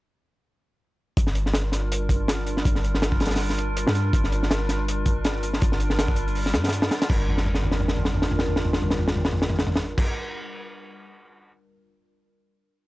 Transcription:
1.17 G1 G3 D4 F4 A#4, kick, closed hi-hat
1.27 snare
1.35 closed hi-hat
1.46 snare
1.54 snare, closed hi-hat
1.72 snare, closed hi-hat
1.92 closed hi-hat
2.09 kick, closed hi-hat
2.28 snare, closed hi-hat
2.46 closed hi-hat
2.57 snare
2.65 G1 G3 D4 F4 A#4, kick, closed hi-hat
2.75 snare
2.84 closed hi-hat
2.94 snare
3.02 snare, closed hi-hat
3.12 kick
3.20 snare, closed hi-hat
3.25 snare, closed hi-hat
3.31 snare, closed hi-hat
3.36 snare, closed hi-hat, open hi-hat
3.50 snare
3.58 closed hi-hat
3.77 closed hi-hat
3.87 G2, snare
3.95 closed hi-hat
4.13 G1 G3 D4 F4 A#4, kick, closed hi-hat
4.24 snare
4.32 closed hi-hat
4.43 snare
4.51 snare, closed hi-hat
4.69 snare, closed hi-hat
4.88 closed hi-hat
5.06 kick, closed hi-hat
5.24 snare, closed hi-hat
5.43 closed hi-hat
5.53 snare
5.62 G1 G3 D4 F4 A#4, kick, closed hi-hat
5.72 snare
5.80 closed hi-hat
5.90 snare
5.99 snare, closed hi-hat
6.08 kick
6.16 closed hi-hat
6.28 closed hi-hat
6.35 open hi-hat
6.46 snare
6.54 G2, snare, closed hi-hat
6.64 snare, closed hi-hat
6.68 snare, closed hi-hat
6.73 closed hi-hat
6.82 snare
6.91 snare, closed hi-hat
7.02 snare, closed hi-hat
7.10 G1 G3 D4 F4 A#4, kick, crash
7.28 floor tom
7.38 snare
7.45 floor tom
7.54 snare
7.63 floor tom
7.71 snare
7.80 floor tom
7.88 snare
7.97 floor tom
8.05 snare
8.14 floor tom
8.22 snare
8.31 floor tom
8.39 snare
8.48 floor tom
8.56 snare
8.65 floor tom
8.73 snare
8.82 floor tom
8.90 snare
8.99 floor tom
9.08 snare
9.16 floor tom
9.25 snare
9.32 floor tom
9.42 snare
9.50 floor tom
9.59 snare
9.67 floor tom
9.75 snare
9.98 kick, crash

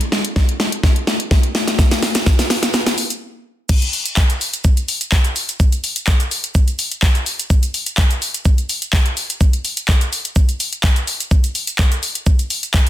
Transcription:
0.01 closed hi-hat
0.12 snare
0.25 closed hi-hat
0.36 kick, snare
0.49 closed hi-hat
0.60 snare
0.72 closed hi-hat
0.83 kick, snare
0.96 closed hi-hat
1.07 snare
1.20 closed hi-hat
1.31 kick, snare
1.43 closed hi-hat
1.55 snare
1.68 snare, closed hi-hat
1.79 kick, snare, shaker
1.91 snare, closed hi-hat, shaker
2.03 snare, open hi-hat, shaker
2.15 snare, closed hi-hat, shaker
2.26 kick, snare, shaker
2.39 snare, closed hi-hat, shaker
2.50 snare, open hi-hat, shaker
2.63 snare, closed hi-hat, shaker
2.74 snare, shaker
2.87 snare, closed hi-hat, shaker
2.98 open hi-hat, shaker
3.10 closed hi-hat, shaker
3.69 kick, crash, shaker
3.82 closed hi-hat, shaker
3.93 open hi-hat, shaker
4.06 closed hi-hat, shaker
4.17 kick, clap, shaker
4.30 closed hi-hat, shaker
4.41 open hi-hat, shaker
4.54 closed hi-hat, shaker
4.64 kick, shaker
4.77 closed hi-hat, shaker
4.88 open hi-hat, shaker
5.01 closed hi-hat, shaker
5.12 kick, clap, shaker
5.25 closed hi-hat, shaker
5.36 open hi-hat, shaker
5.49 closed hi-hat, shaker
5.60 kick, shaker
5.72 closed hi-hat, shaker
5.84 open hi-hat, shaker
5.96 closed hi-hat, shaker
6.07 kick, clap, shaker
6.20 closed hi-hat, shaker
6.31 open hi-hat, shaker
6.44 closed hi-hat, shaker
6.55 kick, shaker
6.68 closed hi-hat, shaker
6.79 open hi-hat, shaker
6.92 closed hi-hat, shaker
7.03 kick, clap, shaker
7.15 closed hi-hat, shaker
7.26 open hi-hat, shaker
7.40 closed hi-hat, shaker
7.50 kick, shaker
7.63 closed hi-hat, shaker
7.74 open hi-hat, shaker
7.86 closed hi-hat, shaker
7.98 kick, clap, shaker
8.11 closed hi-hat, shaker
8.22 open hi-hat, shaker
8.34 closed hi-hat, shaker
8.45 kick, shaker
8.58 closed hi-hat, shaker
8.69 open hi-hat, shaker
8.82 closed hi-hat, shaker
8.93 kick, clap, shaker
9.06 closed hi-hat, shaker
9.17 open hi-hat, shaker
9.30 closed hi-hat, shaker
9.41 kick, shaker
9.53 closed hi-hat, shaker
9.65 open hi-hat, shaker
9.77 closed hi-hat, shaker
9.88 kick, clap, shaker
10.01 closed hi-hat, shaker
10.13 open hi-hat, shaker
10.25 closed hi-hat, shaker
10.36 kick, shaker
10.49 closed hi-hat, shaker
10.60 open hi-hat, shaker
10.73 closed hi-hat, shaker
10.84 kick, clap, shaker
10.96 closed hi-hat, shaker
11.07 open hi-hat, shaker
11.20 closed hi-hat, shaker
11.31 kick, shaker
11.44 closed hi-hat, shaker
11.55 open hi-hat, shaker
11.67 closed hi-hat, shaker
11.79 kick, clap, shaker
11.92 closed hi-hat, shaker
12.03 open hi-hat, shaker
12.15 closed hi-hat, shaker
12.26 kick, shaker
12.39 closed hi-hat, shaker
12.50 open hi-hat, shaker
12.63 closed hi-hat, shaker
12.74 kick, clap, shaker

